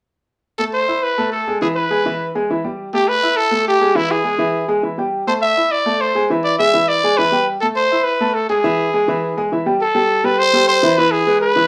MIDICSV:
0, 0, Header, 1, 3, 480
1, 0, Start_track
1, 0, Key_signature, 0, "minor"
1, 0, Tempo, 292540
1, 722, Time_signature, 4, 2, 24, 8
1, 19153, End_track
2, 0, Start_track
2, 0, Title_t, "Trumpet"
2, 0, Program_c, 0, 56
2, 957, Note_on_c, 0, 69, 83
2, 1066, Note_off_c, 0, 69, 0
2, 1206, Note_on_c, 0, 72, 90
2, 1693, Note_on_c, 0, 71, 98
2, 1717, Note_off_c, 0, 72, 0
2, 2157, Note_off_c, 0, 71, 0
2, 2166, Note_on_c, 0, 69, 77
2, 2612, Note_off_c, 0, 69, 0
2, 2652, Note_on_c, 0, 68, 83
2, 2758, Note_off_c, 0, 68, 0
2, 2885, Note_on_c, 0, 71, 88
2, 3780, Note_off_c, 0, 71, 0
2, 4822, Note_on_c, 0, 67, 94
2, 5058, Note_on_c, 0, 71, 99
2, 5083, Note_off_c, 0, 67, 0
2, 5527, Note_on_c, 0, 69, 108
2, 5551, Note_off_c, 0, 71, 0
2, 6008, Note_off_c, 0, 69, 0
2, 6034, Note_on_c, 0, 67, 93
2, 6499, Note_on_c, 0, 64, 95
2, 6524, Note_off_c, 0, 67, 0
2, 6746, Note_on_c, 0, 68, 86
2, 6770, Note_off_c, 0, 64, 0
2, 7700, Note_off_c, 0, 68, 0
2, 8653, Note_on_c, 0, 72, 80
2, 8761, Note_off_c, 0, 72, 0
2, 8887, Note_on_c, 0, 76, 94
2, 9378, Note_on_c, 0, 74, 103
2, 9403, Note_off_c, 0, 76, 0
2, 9859, Note_on_c, 0, 72, 88
2, 9884, Note_off_c, 0, 74, 0
2, 10338, Note_off_c, 0, 72, 0
2, 10568, Note_on_c, 0, 74, 92
2, 10795, Note_off_c, 0, 74, 0
2, 10810, Note_on_c, 0, 76, 100
2, 11299, Note_on_c, 0, 74, 94
2, 11323, Note_off_c, 0, 76, 0
2, 11776, Note_on_c, 0, 71, 88
2, 11800, Note_off_c, 0, 74, 0
2, 12256, Note_off_c, 0, 71, 0
2, 12482, Note_on_c, 0, 69, 73
2, 12593, Note_off_c, 0, 69, 0
2, 12730, Note_on_c, 0, 72, 94
2, 13196, Note_on_c, 0, 71, 88
2, 13220, Note_off_c, 0, 72, 0
2, 13687, Note_on_c, 0, 69, 84
2, 13712, Note_off_c, 0, 71, 0
2, 13927, Note_off_c, 0, 69, 0
2, 13936, Note_on_c, 0, 68, 89
2, 15547, Note_off_c, 0, 68, 0
2, 16101, Note_on_c, 0, 69, 88
2, 16816, Note_on_c, 0, 71, 92
2, 16841, Note_off_c, 0, 69, 0
2, 17047, Note_on_c, 0, 72, 110
2, 17072, Note_off_c, 0, 71, 0
2, 17513, Note_off_c, 0, 72, 0
2, 17523, Note_on_c, 0, 72, 105
2, 18018, Note_on_c, 0, 71, 95
2, 18043, Note_off_c, 0, 72, 0
2, 18237, Note_on_c, 0, 68, 91
2, 18262, Note_off_c, 0, 71, 0
2, 18718, Note_off_c, 0, 68, 0
2, 18728, Note_on_c, 0, 71, 93
2, 19153, Note_off_c, 0, 71, 0
2, 19153, End_track
3, 0, Start_track
3, 0, Title_t, "Grand piano"
3, 0, Program_c, 1, 0
3, 966, Note_on_c, 1, 57, 64
3, 970, Note_on_c, 1, 69, 67
3, 973, Note_on_c, 1, 81, 70
3, 1358, Note_off_c, 1, 57, 0
3, 1361, Note_off_c, 1, 69, 0
3, 1362, Note_off_c, 1, 81, 0
3, 1444, Note_on_c, 1, 64, 58
3, 1450, Note_on_c, 1, 76, 65
3, 1453, Note_on_c, 1, 88, 66
3, 1838, Note_off_c, 1, 64, 0
3, 1841, Note_off_c, 1, 76, 0
3, 1843, Note_off_c, 1, 88, 0
3, 1932, Note_on_c, 1, 69, 83
3, 1934, Note_on_c, 1, 81, 77
3, 1936, Note_on_c, 1, 57, 77
3, 2322, Note_off_c, 1, 69, 0
3, 2324, Note_off_c, 1, 81, 0
3, 2325, Note_off_c, 1, 57, 0
3, 2421, Note_on_c, 1, 68, 68
3, 2425, Note_on_c, 1, 56, 73
3, 2425, Note_on_c, 1, 80, 71
3, 2611, Note_off_c, 1, 68, 0
3, 2613, Note_off_c, 1, 56, 0
3, 2613, Note_off_c, 1, 80, 0
3, 2653, Note_on_c, 1, 52, 80
3, 2657, Note_on_c, 1, 64, 77
3, 2660, Note_on_c, 1, 76, 84
3, 3043, Note_off_c, 1, 52, 0
3, 3046, Note_off_c, 1, 64, 0
3, 3047, Note_off_c, 1, 76, 0
3, 3124, Note_on_c, 1, 56, 70
3, 3127, Note_on_c, 1, 68, 73
3, 3134, Note_on_c, 1, 80, 78
3, 3321, Note_off_c, 1, 56, 0
3, 3323, Note_off_c, 1, 68, 0
3, 3327, Note_off_c, 1, 80, 0
3, 3374, Note_on_c, 1, 52, 83
3, 3378, Note_on_c, 1, 64, 72
3, 3383, Note_on_c, 1, 76, 74
3, 3764, Note_off_c, 1, 52, 0
3, 3766, Note_off_c, 1, 64, 0
3, 3770, Note_off_c, 1, 76, 0
3, 3858, Note_on_c, 1, 56, 82
3, 3863, Note_on_c, 1, 80, 78
3, 3864, Note_on_c, 1, 68, 79
3, 4050, Note_off_c, 1, 56, 0
3, 4053, Note_off_c, 1, 68, 0
3, 4053, Note_off_c, 1, 80, 0
3, 4109, Note_on_c, 1, 52, 69
3, 4110, Note_on_c, 1, 64, 74
3, 4114, Note_on_c, 1, 76, 66
3, 4296, Note_off_c, 1, 52, 0
3, 4297, Note_off_c, 1, 64, 0
3, 4299, Note_off_c, 1, 76, 0
3, 4336, Note_on_c, 1, 67, 69
3, 4340, Note_on_c, 1, 55, 69
3, 4341, Note_on_c, 1, 79, 66
3, 4726, Note_off_c, 1, 67, 0
3, 4728, Note_off_c, 1, 55, 0
3, 4729, Note_off_c, 1, 79, 0
3, 4812, Note_on_c, 1, 57, 69
3, 4818, Note_on_c, 1, 69, 69
3, 4828, Note_on_c, 1, 81, 67
3, 5204, Note_off_c, 1, 57, 0
3, 5208, Note_off_c, 1, 69, 0
3, 5213, Note_off_c, 1, 81, 0
3, 5301, Note_on_c, 1, 64, 64
3, 5303, Note_on_c, 1, 76, 73
3, 5308, Note_on_c, 1, 88, 67
3, 5690, Note_off_c, 1, 64, 0
3, 5691, Note_off_c, 1, 76, 0
3, 5694, Note_off_c, 1, 88, 0
3, 5761, Note_on_c, 1, 57, 81
3, 5765, Note_on_c, 1, 69, 80
3, 5773, Note_on_c, 1, 81, 77
3, 6158, Note_off_c, 1, 57, 0
3, 6161, Note_off_c, 1, 69, 0
3, 6165, Note_off_c, 1, 81, 0
3, 6253, Note_on_c, 1, 56, 75
3, 6257, Note_on_c, 1, 68, 77
3, 6259, Note_on_c, 1, 80, 71
3, 6448, Note_off_c, 1, 56, 0
3, 6451, Note_off_c, 1, 68, 0
3, 6452, Note_off_c, 1, 80, 0
3, 6486, Note_on_c, 1, 52, 83
3, 6491, Note_on_c, 1, 64, 77
3, 6493, Note_on_c, 1, 76, 86
3, 6882, Note_off_c, 1, 52, 0
3, 6885, Note_off_c, 1, 64, 0
3, 6886, Note_off_c, 1, 76, 0
3, 6958, Note_on_c, 1, 56, 70
3, 6960, Note_on_c, 1, 68, 74
3, 6967, Note_on_c, 1, 80, 70
3, 7160, Note_off_c, 1, 56, 0
3, 7161, Note_off_c, 1, 68, 0
3, 7165, Note_off_c, 1, 80, 0
3, 7195, Note_on_c, 1, 52, 76
3, 7199, Note_on_c, 1, 64, 79
3, 7208, Note_on_c, 1, 76, 72
3, 7596, Note_off_c, 1, 52, 0
3, 7598, Note_off_c, 1, 64, 0
3, 7604, Note_off_c, 1, 76, 0
3, 7683, Note_on_c, 1, 56, 84
3, 7686, Note_on_c, 1, 68, 75
3, 7693, Note_on_c, 1, 80, 77
3, 7884, Note_off_c, 1, 56, 0
3, 7885, Note_off_c, 1, 68, 0
3, 7889, Note_off_c, 1, 80, 0
3, 7927, Note_on_c, 1, 52, 64
3, 7929, Note_on_c, 1, 76, 64
3, 7935, Note_on_c, 1, 64, 65
3, 8126, Note_off_c, 1, 52, 0
3, 8127, Note_off_c, 1, 76, 0
3, 8131, Note_off_c, 1, 64, 0
3, 8168, Note_on_c, 1, 55, 69
3, 8181, Note_on_c, 1, 67, 73
3, 8183, Note_on_c, 1, 79, 76
3, 8564, Note_off_c, 1, 55, 0
3, 8572, Note_off_c, 1, 67, 0
3, 8573, Note_off_c, 1, 79, 0
3, 8648, Note_on_c, 1, 57, 72
3, 8653, Note_on_c, 1, 69, 71
3, 8664, Note_on_c, 1, 81, 75
3, 9044, Note_off_c, 1, 57, 0
3, 9048, Note_off_c, 1, 69, 0
3, 9054, Note_off_c, 1, 81, 0
3, 9138, Note_on_c, 1, 64, 68
3, 9143, Note_on_c, 1, 76, 63
3, 9146, Note_on_c, 1, 88, 63
3, 9530, Note_off_c, 1, 64, 0
3, 9534, Note_off_c, 1, 76, 0
3, 9535, Note_off_c, 1, 88, 0
3, 9610, Note_on_c, 1, 57, 75
3, 9618, Note_on_c, 1, 81, 79
3, 9621, Note_on_c, 1, 69, 76
3, 10006, Note_off_c, 1, 57, 0
3, 10011, Note_off_c, 1, 81, 0
3, 10013, Note_off_c, 1, 69, 0
3, 10093, Note_on_c, 1, 56, 74
3, 10096, Note_on_c, 1, 68, 74
3, 10107, Note_on_c, 1, 80, 77
3, 10291, Note_off_c, 1, 56, 0
3, 10293, Note_off_c, 1, 68, 0
3, 10299, Note_off_c, 1, 80, 0
3, 10341, Note_on_c, 1, 52, 80
3, 10347, Note_on_c, 1, 64, 77
3, 10351, Note_on_c, 1, 76, 78
3, 10732, Note_off_c, 1, 52, 0
3, 10736, Note_off_c, 1, 64, 0
3, 10738, Note_off_c, 1, 76, 0
3, 10810, Note_on_c, 1, 56, 73
3, 10818, Note_on_c, 1, 68, 78
3, 10818, Note_on_c, 1, 80, 68
3, 11009, Note_off_c, 1, 56, 0
3, 11014, Note_off_c, 1, 68, 0
3, 11014, Note_off_c, 1, 80, 0
3, 11051, Note_on_c, 1, 64, 75
3, 11054, Note_on_c, 1, 52, 72
3, 11062, Note_on_c, 1, 76, 72
3, 11447, Note_off_c, 1, 64, 0
3, 11449, Note_off_c, 1, 52, 0
3, 11453, Note_off_c, 1, 76, 0
3, 11548, Note_on_c, 1, 56, 74
3, 11551, Note_on_c, 1, 68, 73
3, 11560, Note_on_c, 1, 80, 83
3, 11740, Note_off_c, 1, 56, 0
3, 11742, Note_off_c, 1, 68, 0
3, 11747, Note_off_c, 1, 80, 0
3, 11792, Note_on_c, 1, 52, 65
3, 11795, Note_on_c, 1, 76, 63
3, 11796, Note_on_c, 1, 64, 72
3, 11983, Note_off_c, 1, 52, 0
3, 11984, Note_off_c, 1, 76, 0
3, 11985, Note_off_c, 1, 64, 0
3, 12010, Note_on_c, 1, 55, 71
3, 12016, Note_on_c, 1, 67, 70
3, 12026, Note_on_c, 1, 79, 78
3, 12406, Note_off_c, 1, 55, 0
3, 12410, Note_off_c, 1, 67, 0
3, 12416, Note_off_c, 1, 79, 0
3, 12508, Note_on_c, 1, 57, 64
3, 12508, Note_on_c, 1, 69, 66
3, 12521, Note_on_c, 1, 81, 70
3, 12897, Note_off_c, 1, 57, 0
3, 12897, Note_off_c, 1, 69, 0
3, 12905, Note_off_c, 1, 81, 0
3, 12989, Note_on_c, 1, 76, 69
3, 12990, Note_on_c, 1, 64, 65
3, 12999, Note_on_c, 1, 88, 72
3, 13377, Note_off_c, 1, 64, 0
3, 13377, Note_off_c, 1, 76, 0
3, 13383, Note_off_c, 1, 88, 0
3, 13460, Note_on_c, 1, 57, 83
3, 13466, Note_on_c, 1, 69, 84
3, 13476, Note_on_c, 1, 81, 83
3, 13852, Note_off_c, 1, 57, 0
3, 13855, Note_off_c, 1, 69, 0
3, 13861, Note_off_c, 1, 81, 0
3, 13936, Note_on_c, 1, 56, 71
3, 13941, Note_on_c, 1, 68, 76
3, 13948, Note_on_c, 1, 80, 78
3, 14133, Note_off_c, 1, 56, 0
3, 14135, Note_off_c, 1, 68, 0
3, 14139, Note_off_c, 1, 80, 0
3, 14176, Note_on_c, 1, 64, 77
3, 14177, Note_on_c, 1, 52, 81
3, 14178, Note_on_c, 1, 76, 93
3, 14569, Note_off_c, 1, 52, 0
3, 14569, Note_off_c, 1, 64, 0
3, 14570, Note_off_c, 1, 76, 0
3, 14663, Note_on_c, 1, 56, 74
3, 14673, Note_on_c, 1, 68, 81
3, 14673, Note_on_c, 1, 80, 72
3, 14856, Note_off_c, 1, 56, 0
3, 14862, Note_off_c, 1, 68, 0
3, 14862, Note_off_c, 1, 80, 0
3, 14897, Note_on_c, 1, 52, 87
3, 14905, Note_on_c, 1, 64, 75
3, 14916, Note_on_c, 1, 76, 77
3, 15289, Note_off_c, 1, 52, 0
3, 15293, Note_off_c, 1, 64, 0
3, 15300, Note_off_c, 1, 76, 0
3, 15376, Note_on_c, 1, 56, 78
3, 15385, Note_on_c, 1, 68, 82
3, 15387, Note_on_c, 1, 80, 81
3, 15571, Note_off_c, 1, 56, 0
3, 15576, Note_off_c, 1, 68, 0
3, 15577, Note_off_c, 1, 80, 0
3, 15622, Note_on_c, 1, 52, 65
3, 15627, Note_on_c, 1, 64, 72
3, 15631, Note_on_c, 1, 76, 71
3, 15814, Note_off_c, 1, 52, 0
3, 15817, Note_off_c, 1, 64, 0
3, 15820, Note_off_c, 1, 76, 0
3, 15852, Note_on_c, 1, 55, 82
3, 15856, Note_on_c, 1, 67, 71
3, 15861, Note_on_c, 1, 79, 69
3, 16049, Note_off_c, 1, 55, 0
3, 16050, Note_off_c, 1, 67, 0
3, 16054, Note_off_c, 1, 79, 0
3, 16322, Note_on_c, 1, 67, 70
3, 16323, Note_on_c, 1, 55, 74
3, 16332, Note_on_c, 1, 69, 74
3, 16718, Note_off_c, 1, 55, 0
3, 16718, Note_off_c, 1, 67, 0
3, 16724, Note_off_c, 1, 69, 0
3, 16802, Note_on_c, 1, 55, 75
3, 16810, Note_on_c, 1, 67, 76
3, 16812, Note_on_c, 1, 69, 77
3, 17197, Note_off_c, 1, 55, 0
3, 17202, Note_off_c, 1, 67, 0
3, 17203, Note_off_c, 1, 69, 0
3, 17285, Note_on_c, 1, 55, 92
3, 17299, Note_on_c, 1, 69, 88
3, 17300, Note_on_c, 1, 67, 85
3, 17678, Note_off_c, 1, 55, 0
3, 17686, Note_off_c, 1, 69, 0
3, 17687, Note_off_c, 1, 67, 0
3, 17767, Note_on_c, 1, 52, 100
3, 17779, Note_on_c, 1, 64, 99
3, 17780, Note_on_c, 1, 76, 88
3, 17962, Note_off_c, 1, 52, 0
3, 17969, Note_off_c, 1, 64, 0
3, 17970, Note_off_c, 1, 76, 0
3, 18017, Note_on_c, 1, 52, 87
3, 18028, Note_on_c, 1, 64, 94
3, 18034, Note_on_c, 1, 76, 95
3, 18404, Note_off_c, 1, 52, 0
3, 18410, Note_off_c, 1, 64, 0
3, 18414, Note_off_c, 1, 76, 0
3, 18489, Note_on_c, 1, 56, 82
3, 18492, Note_on_c, 1, 68, 75
3, 18500, Note_on_c, 1, 71, 77
3, 18878, Note_off_c, 1, 56, 0
3, 18880, Note_off_c, 1, 68, 0
3, 18885, Note_off_c, 1, 71, 0
3, 18966, Note_on_c, 1, 52, 77
3, 18975, Note_on_c, 1, 64, 73
3, 18978, Note_on_c, 1, 76, 78
3, 19153, Note_off_c, 1, 52, 0
3, 19153, Note_off_c, 1, 64, 0
3, 19153, Note_off_c, 1, 76, 0
3, 19153, End_track
0, 0, End_of_file